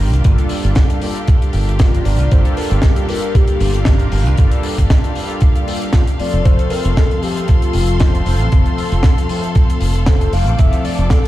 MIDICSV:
0, 0, Header, 1, 7, 480
1, 0, Start_track
1, 0, Tempo, 517241
1, 229, Time_signature, 4, 2, 24, 8
1, 10466, End_track
2, 0, Start_track
2, 0, Title_t, "Violin section"
2, 0, Program_c, 0, 48
2, 0, Note_on_c, 0, 67, 80
2, 0, Note_on_c, 0, 77, 76
2, 5712, Note_off_c, 0, 67, 0
2, 5748, Note_on_c, 0, 69, 80
2, 5750, Note_on_c, 0, 84, 93
2, 9553, Note_off_c, 0, 84, 0
2, 9585, Note_on_c, 0, 86, 88
2, 10466, Note_off_c, 0, 69, 0
2, 10466, Note_off_c, 0, 77, 0
2, 10466, Note_off_c, 0, 86, 0
2, 10466, End_track
3, 0, Start_track
3, 0, Title_t, "Soft synth lead"
3, 0, Program_c, 1, 80
3, 1667, Note_on_c, 1, 65, 93
3, 1905, Note_on_c, 1, 74, 107
3, 1919, Note_off_c, 1, 65, 0
3, 2149, Note_on_c, 1, 72, 115
3, 2163, Note_off_c, 1, 74, 0
3, 2391, Note_on_c, 1, 70, 101
3, 2405, Note_off_c, 1, 72, 0
3, 2637, Note_on_c, 1, 67, 98
3, 2651, Note_off_c, 1, 70, 0
3, 2868, Note_off_c, 1, 67, 0
3, 2873, Note_on_c, 1, 70, 95
3, 3119, Note_on_c, 1, 67, 93
3, 3133, Note_off_c, 1, 70, 0
3, 3834, Note_off_c, 1, 67, 0
3, 5504, Note_on_c, 1, 65, 94
3, 5613, Note_off_c, 1, 65, 0
3, 5750, Note_on_c, 1, 74, 116
3, 5985, Note_on_c, 1, 72, 112
3, 5999, Note_off_c, 1, 74, 0
3, 6224, Note_on_c, 1, 70, 100
3, 6238, Note_off_c, 1, 72, 0
3, 6467, Note_off_c, 1, 70, 0
3, 6470, Note_on_c, 1, 69, 95
3, 6693, Note_off_c, 1, 69, 0
3, 6707, Note_on_c, 1, 67, 94
3, 6931, Note_off_c, 1, 67, 0
3, 6947, Note_on_c, 1, 65, 94
3, 7631, Note_off_c, 1, 65, 0
3, 9349, Note_on_c, 1, 69, 92
3, 9588, Note_on_c, 1, 77, 109
3, 9602, Note_off_c, 1, 69, 0
3, 9824, Note_off_c, 1, 77, 0
3, 9830, Note_on_c, 1, 76, 119
3, 10053, Note_off_c, 1, 76, 0
3, 10066, Note_on_c, 1, 74, 99
3, 10291, Note_off_c, 1, 74, 0
3, 10309, Note_on_c, 1, 69, 90
3, 10466, Note_off_c, 1, 69, 0
3, 10466, End_track
4, 0, Start_track
4, 0, Title_t, "Analog polysynth"
4, 0, Program_c, 2, 90
4, 0, Note_on_c, 2, 55, 79
4, 0, Note_on_c, 2, 58, 73
4, 0, Note_on_c, 2, 62, 72
4, 0, Note_on_c, 2, 65, 72
4, 0, Note_on_c, 2, 70, 88
4, 203, Note_off_c, 2, 55, 0
4, 205, Note_off_c, 2, 58, 0
4, 206, Note_off_c, 2, 62, 0
4, 207, Note_off_c, 2, 65, 0
4, 209, Note_off_c, 2, 70, 0
4, 223, Note_on_c, 2, 55, 90
4, 230, Note_on_c, 2, 58, 85
4, 235, Note_on_c, 2, 62, 85
4, 237, Note_on_c, 2, 65, 84
4, 242, Note_on_c, 2, 69, 97
4, 920, Note_off_c, 2, 55, 0
4, 923, Note_off_c, 2, 58, 0
4, 926, Note_off_c, 2, 62, 0
4, 927, Note_off_c, 2, 65, 0
4, 929, Note_off_c, 2, 69, 0
4, 942, Note_on_c, 2, 55, 76
4, 945, Note_on_c, 2, 58, 72
4, 949, Note_on_c, 2, 62, 72
4, 956, Note_on_c, 2, 65, 67
4, 957, Note_on_c, 2, 69, 82
4, 1639, Note_off_c, 2, 55, 0
4, 1641, Note_off_c, 2, 58, 0
4, 1643, Note_off_c, 2, 62, 0
4, 1646, Note_off_c, 2, 65, 0
4, 1647, Note_off_c, 2, 69, 0
4, 1664, Note_on_c, 2, 55, 78
4, 1667, Note_on_c, 2, 58, 74
4, 1670, Note_on_c, 2, 62, 76
4, 1672, Note_on_c, 2, 70, 88
4, 1673, Note_on_c, 2, 65, 74
4, 2120, Note_off_c, 2, 55, 0
4, 2122, Note_off_c, 2, 58, 0
4, 2123, Note_off_c, 2, 62, 0
4, 2124, Note_off_c, 2, 70, 0
4, 2125, Note_off_c, 2, 65, 0
4, 2144, Note_on_c, 2, 55, 95
4, 2148, Note_on_c, 2, 58, 85
4, 2154, Note_on_c, 2, 62, 86
4, 2155, Note_on_c, 2, 65, 83
4, 2161, Note_on_c, 2, 69, 103
4, 2840, Note_off_c, 2, 55, 0
4, 2842, Note_off_c, 2, 58, 0
4, 2845, Note_off_c, 2, 62, 0
4, 2846, Note_off_c, 2, 65, 0
4, 2849, Note_off_c, 2, 69, 0
4, 2861, Note_on_c, 2, 55, 75
4, 2868, Note_on_c, 2, 58, 72
4, 2869, Note_on_c, 2, 62, 69
4, 2873, Note_on_c, 2, 65, 70
4, 2881, Note_on_c, 2, 69, 81
4, 3559, Note_off_c, 2, 55, 0
4, 3562, Note_off_c, 2, 58, 0
4, 3563, Note_off_c, 2, 62, 0
4, 3565, Note_off_c, 2, 65, 0
4, 3569, Note_off_c, 2, 69, 0
4, 3581, Note_on_c, 2, 55, 77
4, 3584, Note_on_c, 2, 58, 75
4, 3587, Note_on_c, 2, 62, 72
4, 3587, Note_on_c, 2, 65, 73
4, 3591, Note_on_c, 2, 70, 88
4, 4039, Note_off_c, 2, 55, 0
4, 4041, Note_off_c, 2, 58, 0
4, 4042, Note_off_c, 2, 62, 0
4, 4042, Note_off_c, 2, 65, 0
4, 4044, Note_off_c, 2, 70, 0
4, 4061, Note_on_c, 2, 55, 91
4, 4063, Note_on_c, 2, 58, 89
4, 4071, Note_on_c, 2, 62, 83
4, 4074, Note_on_c, 2, 65, 86
4, 4080, Note_on_c, 2, 69, 105
4, 4759, Note_off_c, 2, 55, 0
4, 4760, Note_off_c, 2, 58, 0
4, 4764, Note_off_c, 2, 62, 0
4, 4765, Note_off_c, 2, 65, 0
4, 4769, Note_off_c, 2, 69, 0
4, 4777, Note_on_c, 2, 55, 74
4, 4781, Note_on_c, 2, 58, 69
4, 4784, Note_on_c, 2, 62, 67
4, 4789, Note_on_c, 2, 65, 68
4, 4796, Note_on_c, 2, 69, 83
4, 5477, Note_off_c, 2, 55, 0
4, 5479, Note_off_c, 2, 58, 0
4, 5480, Note_off_c, 2, 62, 0
4, 5483, Note_off_c, 2, 65, 0
4, 5486, Note_off_c, 2, 69, 0
4, 5748, Note_on_c, 2, 53, 88
4, 5749, Note_on_c, 2, 57, 78
4, 5752, Note_on_c, 2, 60, 79
4, 5754, Note_on_c, 2, 65, 78
4, 5756, Note_on_c, 2, 69, 97
4, 5962, Note_off_c, 2, 53, 0
4, 5963, Note_off_c, 2, 57, 0
4, 5964, Note_off_c, 2, 60, 0
4, 5966, Note_off_c, 2, 65, 0
4, 5966, Note_off_c, 2, 69, 0
4, 5979, Note_on_c, 2, 53, 94
4, 5987, Note_on_c, 2, 57, 85
4, 5989, Note_on_c, 2, 60, 83
4, 5994, Note_on_c, 2, 65, 83
4, 5998, Note_on_c, 2, 69, 103
4, 6678, Note_off_c, 2, 53, 0
4, 6682, Note_off_c, 2, 57, 0
4, 6683, Note_off_c, 2, 60, 0
4, 6686, Note_off_c, 2, 65, 0
4, 6688, Note_off_c, 2, 69, 0
4, 6702, Note_on_c, 2, 53, 77
4, 6709, Note_on_c, 2, 57, 68
4, 6713, Note_on_c, 2, 60, 69
4, 6717, Note_on_c, 2, 65, 65
4, 6722, Note_on_c, 2, 69, 86
4, 7399, Note_off_c, 2, 53, 0
4, 7403, Note_off_c, 2, 57, 0
4, 7405, Note_off_c, 2, 60, 0
4, 7407, Note_off_c, 2, 65, 0
4, 7409, Note_off_c, 2, 69, 0
4, 7424, Note_on_c, 2, 53, 77
4, 7425, Note_on_c, 2, 57, 75
4, 7429, Note_on_c, 2, 60, 72
4, 7433, Note_on_c, 2, 65, 72
4, 7435, Note_on_c, 2, 72, 88
4, 7881, Note_off_c, 2, 53, 0
4, 7881, Note_off_c, 2, 57, 0
4, 7883, Note_off_c, 2, 60, 0
4, 7885, Note_off_c, 2, 65, 0
4, 7886, Note_off_c, 2, 72, 0
4, 7905, Note_on_c, 2, 53, 94
4, 7908, Note_on_c, 2, 57, 86
4, 7913, Note_on_c, 2, 60, 86
4, 7918, Note_on_c, 2, 65, 86
4, 7923, Note_on_c, 2, 69, 98
4, 8601, Note_off_c, 2, 53, 0
4, 8602, Note_off_c, 2, 57, 0
4, 8605, Note_off_c, 2, 60, 0
4, 8607, Note_off_c, 2, 65, 0
4, 8610, Note_off_c, 2, 69, 0
4, 8628, Note_on_c, 2, 53, 78
4, 8633, Note_on_c, 2, 57, 68
4, 8635, Note_on_c, 2, 60, 69
4, 8641, Note_on_c, 2, 65, 67
4, 8645, Note_on_c, 2, 69, 82
4, 9322, Note_off_c, 2, 53, 0
4, 9325, Note_off_c, 2, 57, 0
4, 9326, Note_off_c, 2, 60, 0
4, 9329, Note_off_c, 2, 65, 0
4, 9331, Note_off_c, 2, 69, 0
4, 9352, Note_on_c, 2, 53, 80
4, 9352, Note_on_c, 2, 57, 71
4, 9356, Note_on_c, 2, 60, 73
4, 9356, Note_on_c, 2, 65, 70
4, 9360, Note_on_c, 2, 72, 85
4, 9804, Note_off_c, 2, 53, 0
4, 9805, Note_off_c, 2, 57, 0
4, 9806, Note_off_c, 2, 60, 0
4, 9807, Note_off_c, 2, 65, 0
4, 9808, Note_off_c, 2, 72, 0
4, 9819, Note_on_c, 2, 53, 91
4, 9825, Note_on_c, 2, 57, 87
4, 9830, Note_on_c, 2, 60, 81
4, 9833, Note_on_c, 2, 65, 83
4, 9838, Note_on_c, 2, 69, 101
4, 10466, Note_off_c, 2, 53, 0
4, 10466, Note_off_c, 2, 57, 0
4, 10466, Note_off_c, 2, 60, 0
4, 10466, Note_off_c, 2, 65, 0
4, 10466, Note_off_c, 2, 69, 0
4, 10466, End_track
5, 0, Start_track
5, 0, Title_t, "Fingered electric bass"
5, 0, Program_c, 3, 33
5, 0, Note_on_c, 3, 31, 100
5, 118, Note_off_c, 3, 31, 0
5, 118, Note_on_c, 3, 36, 90
5, 197, Note_off_c, 3, 36, 0
5, 234, Note_on_c, 3, 31, 96
5, 324, Note_off_c, 3, 31, 0
5, 601, Note_on_c, 3, 31, 95
5, 678, Note_off_c, 3, 31, 0
5, 1430, Note_on_c, 3, 31, 85
5, 1859, Note_off_c, 3, 31, 0
5, 1910, Note_on_c, 3, 31, 104
5, 2037, Note_off_c, 3, 31, 0
5, 2037, Note_on_c, 3, 36, 91
5, 2116, Note_off_c, 3, 36, 0
5, 2152, Note_on_c, 3, 31, 94
5, 2243, Note_off_c, 3, 31, 0
5, 2520, Note_on_c, 3, 31, 100
5, 2597, Note_off_c, 3, 31, 0
5, 3347, Note_on_c, 3, 31, 88
5, 3777, Note_off_c, 3, 31, 0
5, 3828, Note_on_c, 3, 31, 104
5, 3960, Note_off_c, 3, 31, 0
5, 3960, Note_on_c, 3, 36, 89
5, 4037, Note_off_c, 3, 36, 0
5, 4441, Note_on_c, 3, 31, 94
5, 4518, Note_off_c, 3, 31, 0
5, 5880, Note_on_c, 3, 29, 86
5, 5957, Note_off_c, 3, 29, 0
5, 5991, Note_on_c, 3, 29, 94
5, 6082, Note_off_c, 3, 29, 0
5, 6360, Note_on_c, 3, 29, 99
5, 6438, Note_off_c, 3, 29, 0
5, 7189, Note_on_c, 3, 29, 91
5, 7618, Note_off_c, 3, 29, 0
5, 7670, Note_on_c, 3, 29, 99
5, 7800, Note_off_c, 3, 29, 0
5, 7800, Note_on_c, 3, 33, 90
5, 7878, Note_off_c, 3, 33, 0
5, 7912, Note_on_c, 3, 29, 94
5, 8003, Note_off_c, 3, 29, 0
5, 8280, Note_on_c, 3, 29, 93
5, 8358, Note_off_c, 3, 29, 0
5, 9109, Note_on_c, 3, 29, 89
5, 9538, Note_off_c, 3, 29, 0
5, 9587, Note_on_c, 3, 29, 102
5, 9714, Note_off_c, 3, 29, 0
5, 9714, Note_on_c, 3, 33, 89
5, 9795, Note_off_c, 3, 33, 0
5, 9829, Note_on_c, 3, 29, 98
5, 9922, Note_off_c, 3, 29, 0
5, 10197, Note_on_c, 3, 29, 100
5, 10276, Note_off_c, 3, 29, 0
5, 10466, End_track
6, 0, Start_track
6, 0, Title_t, "Muted fingered electric bass strokes"
6, 5749, Note_on_c, 9, 29, 42
6, 5841, Note_off_c, 9, 29, 0
6, 10466, End_track
7, 0, Start_track
7, 0, Title_t, "Drums"
7, 125, Note_on_c, 9, 42, 57
7, 218, Note_off_c, 9, 42, 0
7, 226, Note_on_c, 9, 42, 84
7, 232, Note_on_c, 9, 36, 120
7, 319, Note_off_c, 9, 42, 0
7, 325, Note_off_c, 9, 36, 0
7, 357, Note_on_c, 9, 42, 54
7, 449, Note_off_c, 9, 42, 0
7, 457, Note_on_c, 9, 46, 113
7, 550, Note_off_c, 9, 46, 0
7, 600, Note_on_c, 9, 42, 56
7, 693, Note_off_c, 9, 42, 0
7, 699, Note_on_c, 9, 42, 71
7, 705, Note_on_c, 9, 38, 124
7, 712, Note_on_c, 9, 36, 122
7, 792, Note_off_c, 9, 42, 0
7, 798, Note_off_c, 9, 38, 0
7, 805, Note_off_c, 9, 36, 0
7, 835, Note_on_c, 9, 42, 60
7, 928, Note_off_c, 9, 42, 0
7, 942, Note_on_c, 9, 46, 112
7, 1035, Note_off_c, 9, 46, 0
7, 1075, Note_on_c, 9, 42, 55
7, 1168, Note_off_c, 9, 42, 0
7, 1183, Note_on_c, 9, 42, 75
7, 1191, Note_on_c, 9, 36, 126
7, 1276, Note_off_c, 9, 42, 0
7, 1284, Note_off_c, 9, 36, 0
7, 1319, Note_on_c, 9, 42, 50
7, 1412, Note_off_c, 9, 42, 0
7, 1420, Note_on_c, 9, 46, 101
7, 1513, Note_off_c, 9, 46, 0
7, 1566, Note_on_c, 9, 42, 50
7, 1659, Note_off_c, 9, 42, 0
7, 1661, Note_on_c, 9, 42, 78
7, 1667, Note_on_c, 9, 38, 125
7, 1671, Note_on_c, 9, 36, 126
7, 1754, Note_off_c, 9, 42, 0
7, 1760, Note_off_c, 9, 38, 0
7, 1764, Note_off_c, 9, 36, 0
7, 1805, Note_on_c, 9, 42, 60
7, 1898, Note_off_c, 9, 42, 0
7, 1904, Note_on_c, 9, 46, 108
7, 1997, Note_off_c, 9, 46, 0
7, 2040, Note_on_c, 9, 42, 55
7, 2132, Note_off_c, 9, 42, 0
7, 2148, Note_on_c, 9, 42, 73
7, 2151, Note_on_c, 9, 36, 127
7, 2240, Note_off_c, 9, 42, 0
7, 2244, Note_off_c, 9, 36, 0
7, 2274, Note_on_c, 9, 42, 52
7, 2367, Note_off_c, 9, 42, 0
7, 2385, Note_on_c, 9, 46, 114
7, 2478, Note_off_c, 9, 46, 0
7, 2514, Note_on_c, 9, 42, 49
7, 2607, Note_off_c, 9, 42, 0
7, 2614, Note_on_c, 9, 38, 118
7, 2624, Note_on_c, 9, 42, 74
7, 2630, Note_on_c, 9, 36, 124
7, 2707, Note_off_c, 9, 38, 0
7, 2716, Note_off_c, 9, 42, 0
7, 2723, Note_off_c, 9, 36, 0
7, 2749, Note_on_c, 9, 42, 58
7, 2842, Note_off_c, 9, 42, 0
7, 2863, Note_on_c, 9, 46, 113
7, 2956, Note_off_c, 9, 46, 0
7, 2989, Note_on_c, 9, 42, 58
7, 3082, Note_off_c, 9, 42, 0
7, 3109, Note_on_c, 9, 36, 121
7, 3109, Note_on_c, 9, 42, 71
7, 3202, Note_off_c, 9, 36, 0
7, 3202, Note_off_c, 9, 42, 0
7, 3225, Note_on_c, 9, 42, 59
7, 3318, Note_off_c, 9, 42, 0
7, 3344, Note_on_c, 9, 46, 112
7, 3436, Note_off_c, 9, 46, 0
7, 3474, Note_on_c, 9, 42, 50
7, 3567, Note_off_c, 9, 42, 0
7, 3574, Note_on_c, 9, 38, 121
7, 3584, Note_on_c, 9, 42, 79
7, 3590, Note_on_c, 9, 36, 121
7, 3667, Note_off_c, 9, 38, 0
7, 3677, Note_off_c, 9, 42, 0
7, 3683, Note_off_c, 9, 36, 0
7, 3707, Note_on_c, 9, 42, 55
7, 3800, Note_off_c, 9, 42, 0
7, 3821, Note_on_c, 9, 46, 106
7, 3914, Note_off_c, 9, 46, 0
7, 3954, Note_on_c, 9, 42, 55
7, 4047, Note_off_c, 9, 42, 0
7, 4060, Note_on_c, 9, 42, 64
7, 4069, Note_on_c, 9, 36, 127
7, 4153, Note_off_c, 9, 42, 0
7, 4162, Note_off_c, 9, 36, 0
7, 4190, Note_on_c, 9, 42, 56
7, 4283, Note_off_c, 9, 42, 0
7, 4300, Note_on_c, 9, 46, 107
7, 4392, Note_off_c, 9, 46, 0
7, 4438, Note_on_c, 9, 42, 58
7, 4440, Note_on_c, 9, 36, 62
7, 4531, Note_off_c, 9, 42, 0
7, 4533, Note_off_c, 9, 36, 0
7, 4549, Note_on_c, 9, 38, 118
7, 4550, Note_on_c, 9, 36, 121
7, 4552, Note_on_c, 9, 42, 80
7, 4641, Note_off_c, 9, 38, 0
7, 4643, Note_off_c, 9, 36, 0
7, 4645, Note_off_c, 9, 42, 0
7, 4679, Note_on_c, 9, 42, 58
7, 4771, Note_off_c, 9, 42, 0
7, 4784, Note_on_c, 9, 46, 105
7, 4877, Note_off_c, 9, 46, 0
7, 4916, Note_on_c, 9, 42, 57
7, 5009, Note_off_c, 9, 42, 0
7, 5016, Note_on_c, 9, 42, 68
7, 5029, Note_on_c, 9, 36, 123
7, 5109, Note_off_c, 9, 42, 0
7, 5122, Note_off_c, 9, 36, 0
7, 5155, Note_on_c, 9, 42, 52
7, 5247, Note_off_c, 9, 42, 0
7, 5268, Note_on_c, 9, 46, 118
7, 5361, Note_off_c, 9, 46, 0
7, 5399, Note_on_c, 9, 42, 57
7, 5492, Note_off_c, 9, 42, 0
7, 5500, Note_on_c, 9, 38, 118
7, 5501, Note_on_c, 9, 42, 73
7, 5509, Note_on_c, 9, 36, 121
7, 5592, Note_off_c, 9, 38, 0
7, 5594, Note_off_c, 9, 42, 0
7, 5602, Note_off_c, 9, 36, 0
7, 5637, Note_on_c, 9, 42, 56
7, 5730, Note_off_c, 9, 42, 0
7, 5749, Note_on_c, 9, 46, 102
7, 5842, Note_off_c, 9, 46, 0
7, 5872, Note_on_c, 9, 42, 53
7, 5965, Note_off_c, 9, 42, 0
7, 5989, Note_on_c, 9, 42, 76
7, 5991, Note_on_c, 9, 36, 118
7, 6082, Note_off_c, 9, 42, 0
7, 6084, Note_off_c, 9, 36, 0
7, 6115, Note_on_c, 9, 42, 55
7, 6208, Note_off_c, 9, 42, 0
7, 6220, Note_on_c, 9, 46, 110
7, 6313, Note_off_c, 9, 46, 0
7, 6356, Note_on_c, 9, 42, 53
7, 6449, Note_off_c, 9, 42, 0
7, 6469, Note_on_c, 9, 38, 104
7, 6470, Note_on_c, 9, 42, 73
7, 6471, Note_on_c, 9, 36, 120
7, 6562, Note_off_c, 9, 38, 0
7, 6562, Note_off_c, 9, 42, 0
7, 6564, Note_off_c, 9, 36, 0
7, 6601, Note_on_c, 9, 42, 48
7, 6694, Note_off_c, 9, 42, 0
7, 6706, Note_on_c, 9, 46, 113
7, 6799, Note_off_c, 9, 46, 0
7, 6840, Note_on_c, 9, 42, 60
7, 6933, Note_off_c, 9, 42, 0
7, 6941, Note_on_c, 9, 42, 76
7, 6952, Note_on_c, 9, 36, 110
7, 7034, Note_off_c, 9, 42, 0
7, 7045, Note_off_c, 9, 36, 0
7, 7073, Note_on_c, 9, 42, 58
7, 7166, Note_off_c, 9, 42, 0
7, 7177, Note_on_c, 9, 46, 120
7, 7269, Note_off_c, 9, 46, 0
7, 7312, Note_on_c, 9, 42, 55
7, 7405, Note_off_c, 9, 42, 0
7, 7421, Note_on_c, 9, 42, 80
7, 7428, Note_on_c, 9, 38, 120
7, 7432, Note_on_c, 9, 36, 123
7, 7514, Note_off_c, 9, 42, 0
7, 7520, Note_off_c, 9, 38, 0
7, 7525, Note_off_c, 9, 36, 0
7, 7561, Note_on_c, 9, 42, 54
7, 7654, Note_off_c, 9, 42, 0
7, 7664, Note_on_c, 9, 46, 105
7, 7757, Note_off_c, 9, 46, 0
7, 7796, Note_on_c, 9, 42, 54
7, 7889, Note_off_c, 9, 42, 0
7, 7906, Note_on_c, 9, 42, 73
7, 7912, Note_on_c, 9, 36, 117
7, 7999, Note_off_c, 9, 42, 0
7, 8005, Note_off_c, 9, 36, 0
7, 8034, Note_on_c, 9, 42, 50
7, 8127, Note_off_c, 9, 42, 0
7, 8150, Note_on_c, 9, 46, 101
7, 8242, Note_off_c, 9, 46, 0
7, 8277, Note_on_c, 9, 42, 54
7, 8370, Note_off_c, 9, 42, 0
7, 8379, Note_on_c, 9, 38, 108
7, 8391, Note_on_c, 9, 36, 117
7, 8391, Note_on_c, 9, 42, 77
7, 8472, Note_off_c, 9, 38, 0
7, 8483, Note_off_c, 9, 42, 0
7, 8484, Note_off_c, 9, 36, 0
7, 8520, Note_on_c, 9, 42, 55
7, 8613, Note_off_c, 9, 42, 0
7, 8624, Note_on_c, 9, 46, 111
7, 8717, Note_off_c, 9, 46, 0
7, 8758, Note_on_c, 9, 42, 58
7, 8851, Note_off_c, 9, 42, 0
7, 8864, Note_on_c, 9, 42, 70
7, 8870, Note_on_c, 9, 36, 111
7, 8957, Note_off_c, 9, 42, 0
7, 8962, Note_off_c, 9, 36, 0
7, 8999, Note_on_c, 9, 42, 57
7, 9092, Note_off_c, 9, 42, 0
7, 9099, Note_on_c, 9, 46, 103
7, 9192, Note_off_c, 9, 46, 0
7, 9237, Note_on_c, 9, 42, 55
7, 9329, Note_off_c, 9, 42, 0
7, 9339, Note_on_c, 9, 38, 127
7, 9344, Note_on_c, 9, 42, 83
7, 9349, Note_on_c, 9, 36, 122
7, 9432, Note_off_c, 9, 38, 0
7, 9436, Note_off_c, 9, 42, 0
7, 9442, Note_off_c, 9, 36, 0
7, 9476, Note_on_c, 9, 42, 59
7, 9569, Note_off_c, 9, 42, 0
7, 9584, Note_on_c, 9, 46, 99
7, 9676, Note_off_c, 9, 46, 0
7, 9712, Note_on_c, 9, 42, 51
7, 9804, Note_off_c, 9, 42, 0
7, 9824, Note_on_c, 9, 42, 86
7, 9829, Note_on_c, 9, 36, 117
7, 9917, Note_off_c, 9, 42, 0
7, 9922, Note_off_c, 9, 36, 0
7, 9955, Note_on_c, 9, 42, 60
7, 10048, Note_off_c, 9, 42, 0
7, 10066, Note_on_c, 9, 46, 102
7, 10158, Note_off_c, 9, 46, 0
7, 10194, Note_on_c, 9, 42, 56
7, 10287, Note_off_c, 9, 42, 0
7, 10302, Note_on_c, 9, 38, 100
7, 10308, Note_on_c, 9, 42, 82
7, 10309, Note_on_c, 9, 36, 115
7, 10395, Note_off_c, 9, 38, 0
7, 10401, Note_off_c, 9, 36, 0
7, 10401, Note_off_c, 9, 42, 0
7, 10466, End_track
0, 0, End_of_file